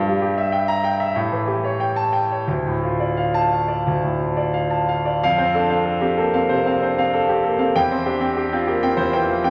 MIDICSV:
0, 0, Header, 1, 2, 480
1, 0, Start_track
1, 0, Key_signature, -1, "minor"
1, 0, Tempo, 630915
1, 1361, Tempo, 685714
1, 1837, Time_signature, 4, 2, 24, 8
1, 3761, Key_signature, -1, "major"
1, 3761, Tempo, 636943
1, 5201, Tempo, 617920
1, 7043, End_track
2, 0, Start_track
2, 0, Title_t, "Grand piano"
2, 0, Program_c, 0, 0
2, 0, Note_on_c, 0, 43, 65
2, 53, Note_on_c, 0, 55, 45
2, 65, Control_c, 0, 64, 127
2, 166, Note_on_c, 0, 67, 53
2, 235, Note_off_c, 0, 55, 0
2, 287, Note_on_c, 0, 76, 50
2, 351, Note_off_c, 0, 67, 0
2, 398, Note_on_c, 0, 79, 55
2, 471, Note_off_c, 0, 76, 0
2, 517, Note_on_c, 0, 82, 71
2, 587, Note_off_c, 0, 79, 0
2, 640, Note_on_c, 0, 79, 55
2, 706, Note_off_c, 0, 82, 0
2, 761, Note_on_c, 0, 76, 56
2, 827, Note_off_c, 0, 79, 0
2, 846, Note_off_c, 0, 43, 0
2, 876, Note_off_c, 0, 76, 0
2, 878, Note_on_c, 0, 45, 57
2, 887, Control_c, 0, 64, 0
2, 993, Control_c, 0, 64, 127
2, 1002, Note_on_c, 0, 52, 49
2, 1122, Note_on_c, 0, 67, 40
2, 1192, Note_off_c, 0, 52, 0
2, 1249, Note_on_c, 0, 73, 52
2, 1315, Note_off_c, 0, 67, 0
2, 1369, Note_on_c, 0, 79, 50
2, 1437, Note_off_c, 0, 73, 0
2, 1483, Note_on_c, 0, 81, 64
2, 1553, Note_off_c, 0, 79, 0
2, 1598, Note_on_c, 0, 79, 48
2, 1670, Note_off_c, 0, 81, 0
2, 1727, Note_on_c, 0, 73, 40
2, 1789, Note_off_c, 0, 79, 0
2, 1812, Note_off_c, 0, 45, 0
2, 1842, Note_on_c, 0, 38, 52
2, 1843, Note_off_c, 0, 73, 0
2, 1854, Control_c, 0, 64, 0
2, 1972, Note_on_c, 0, 45, 46
2, 2001, Control_c, 0, 64, 127
2, 2092, Note_on_c, 0, 65, 43
2, 2161, Note_off_c, 0, 45, 0
2, 2207, Note_on_c, 0, 74, 42
2, 2282, Note_off_c, 0, 65, 0
2, 2328, Note_on_c, 0, 77, 48
2, 2401, Note_off_c, 0, 74, 0
2, 2449, Note_on_c, 0, 81, 64
2, 2521, Note_off_c, 0, 77, 0
2, 2572, Note_on_c, 0, 77, 40
2, 2642, Note_off_c, 0, 81, 0
2, 2685, Note_on_c, 0, 74, 42
2, 2763, Note_off_c, 0, 77, 0
2, 2783, Note_off_c, 0, 38, 0
2, 2817, Note_on_c, 0, 38, 50
2, 2878, Note_off_c, 0, 74, 0
2, 2931, Note_on_c, 0, 45, 40
2, 3048, Note_on_c, 0, 65, 34
2, 3117, Note_off_c, 0, 45, 0
2, 3165, Note_on_c, 0, 74, 46
2, 3235, Note_off_c, 0, 65, 0
2, 3283, Note_on_c, 0, 77, 50
2, 3355, Note_off_c, 0, 74, 0
2, 3402, Note_on_c, 0, 81, 48
2, 3476, Note_off_c, 0, 77, 0
2, 3528, Note_on_c, 0, 77, 47
2, 3597, Note_off_c, 0, 81, 0
2, 3646, Note_on_c, 0, 74, 40
2, 3717, Note_off_c, 0, 77, 0
2, 3738, Note_off_c, 0, 38, 0
2, 3762, Note_off_c, 0, 74, 0
2, 3773, Note_on_c, 0, 41, 68
2, 3773, Note_on_c, 0, 77, 75
2, 3776, Control_c, 0, 64, 0
2, 3883, Note_on_c, 0, 72, 53
2, 3887, Note_on_c, 0, 60, 52
2, 3893, Control_c, 0, 64, 127
2, 3962, Note_off_c, 0, 77, 0
2, 4007, Note_on_c, 0, 69, 57
2, 4009, Note_on_c, 0, 62, 47
2, 4076, Note_off_c, 0, 72, 0
2, 4078, Note_off_c, 0, 60, 0
2, 4120, Note_on_c, 0, 60, 46
2, 4120, Note_on_c, 0, 77, 53
2, 4127, Note_off_c, 0, 62, 0
2, 4198, Note_off_c, 0, 69, 0
2, 4239, Note_on_c, 0, 69, 49
2, 4313, Note_off_c, 0, 60, 0
2, 4314, Note_off_c, 0, 77, 0
2, 4359, Note_on_c, 0, 60, 53
2, 4360, Note_on_c, 0, 67, 49
2, 4434, Note_off_c, 0, 69, 0
2, 4480, Note_on_c, 0, 69, 55
2, 4483, Note_off_c, 0, 67, 0
2, 4483, Note_on_c, 0, 58, 43
2, 4555, Note_off_c, 0, 60, 0
2, 4603, Note_on_c, 0, 77, 57
2, 4605, Note_off_c, 0, 58, 0
2, 4605, Note_on_c, 0, 60, 52
2, 4676, Note_off_c, 0, 69, 0
2, 4703, Note_off_c, 0, 41, 0
2, 4722, Note_on_c, 0, 72, 61
2, 4724, Note_on_c, 0, 48, 53
2, 4797, Note_off_c, 0, 77, 0
2, 4798, Note_off_c, 0, 60, 0
2, 4847, Note_on_c, 0, 60, 49
2, 4850, Note_on_c, 0, 77, 55
2, 4915, Note_off_c, 0, 72, 0
2, 4916, Note_off_c, 0, 48, 0
2, 4962, Note_on_c, 0, 62, 38
2, 4968, Note_on_c, 0, 72, 49
2, 5036, Note_off_c, 0, 60, 0
2, 5038, Note_off_c, 0, 77, 0
2, 5081, Note_off_c, 0, 62, 0
2, 5089, Note_on_c, 0, 60, 53
2, 5091, Note_on_c, 0, 77, 60
2, 5155, Note_off_c, 0, 72, 0
2, 5206, Note_on_c, 0, 69, 56
2, 5276, Note_off_c, 0, 60, 0
2, 5277, Note_off_c, 0, 77, 0
2, 5325, Note_on_c, 0, 60, 47
2, 5326, Note_on_c, 0, 67, 43
2, 5397, Note_off_c, 0, 69, 0
2, 5438, Note_on_c, 0, 58, 45
2, 5443, Note_on_c, 0, 69, 55
2, 5444, Note_off_c, 0, 67, 0
2, 5516, Note_off_c, 0, 60, 0
2, 5556, Note_on_c, 0, 77, 51
2, 5557, Note_on_c, 0, 60, 46
2, 5560, Note_off_c, 0, 58, 0
2, 5634, Note_off_c, 0, 69, 0
2, 5678, Note_off_c, 0, 77, 0
2, 5679, Note_off_c, 0, 60, 0
2, 5688, Note_on_c, 0, 79, 80
2, 5690, Note_on_c, 0, 40, 62
2, 5693, Control_c, 0, 64, 0
2, 5809, Note_on_c, 0, 72, 59
2, 5811, Note_on_c, 0, 60, 52
2, 5832, Control_c, 0, 64, 127
2, 5875, Note_off_c, 0, 79, 0
2, 5921, Note_on_c, 0, 62, 48
2, 5925, Note_on_c, 0, 67, 64
2, 5995, Note_off_c, 0, 72, 0
2, 5996, Note_off_c, 0, 60, 0
2, 6035, Note_on_c, 0, 60, 50
2, 6038, Note_on_c, 0, 79, 51
2, 6039, Note_off_c, 0, 62, 0
2, 6113, Note_off_c, 0, 67, 0
2, 6163, Note_on_c, 0, 67, 56
2, 6229, Note_off_c, 0, 60, 0
2, 6231, Note_off_c, 0, 79, 0
2, 6287, Note_on_c, 0, 60, 53
2, 6291, Note_on_c, 0, 65, 50
2, 6354, Note_off_c, 0, 67, 0
2, 6402, Note_on_c, 0, 67, 56
2, 6403, Note_on_c, 0, 58, 48
2, 6405, Note_off_c, 0, 65, 0
2, 6476, Note_off_c, 0, 60, 0
2, 6522, Note_off_c, 0, 58, 0
2, 6522, Note_on_c, 0, 79, 62
2, 6526, Note_on_c, 0, 60, 54
2, 6593, Note_off_c, 0, 67, 0
2, 6616, Note_off_c, 0, 40, 0
2, 6630, Note_on_c, 0, 72, 68
2, 6632, Note_on_c, 0, 40, 67
2, 6714, Note_off_c, 0, 79, 0
2, 6716, Note_off_c, 0, 60, 0
2, 6757, Note_on_c, 0, 79, 62
2, 6760, Note_on_c, 0, 52, 60
2, 6828, Note_off_c, 0, 72, 0
2, 6877, Note_on_c, 0, 53, 48
2, 6877, Note_on_c, 0, 72, 48
2, 6952, Note_off_c, 0, 79, 0
2, 6953, Note_off_c, 0, 52, 0
2, 6998, Note_on_c, 0, 60, 55
2, 6999, Note_off_c, 0, 53, 0
2, 6999, Note_on_c, 0, 79, 63
2, 7043, Note_off_c, 0, 40, 0
2, 7043, Note_off_c, 0, 60, 0
2, 7043, Note_off_c, 0, 72, 0
2, 7043, Note_off_c, 0, 79, 0
2, 7043, End_track
0, 0, End_of_file